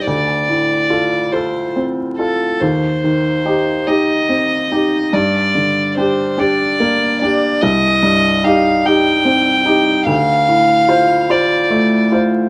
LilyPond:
<<
  \new Staff \with { instrumentName = "Violin" } { \time 6/8 \key c \dorian \tempo 4. = 48 d''4. c''8 r8 a'8 | c''4. ees''4. | d''4 c''8 d''4 d''8 | ees''4 f''8 g''4. |
f''4. d''4 r8 | }
  \new Staff \with { instrumentName = "Upright piano" } { \time 6/8 \key c \dorian d,8 a,8 <f' a'>8 <f' a'>8 c'8 <f' a'>8 | ees,8 ees8 <ees' g'>8 <ees' g'>8 c'8 <ees' g'>8 | g,8 d8 <d' g'>8 <d' g'>8 bes8 <d' g'>8 | c,8 g,8 <ees' g'>8 <ees' g'>8 c'8 <ees' g'>8 |
d,8 a,8 <f' c''>8 <f' c''>8 a8 <f' c''>8 | }
>>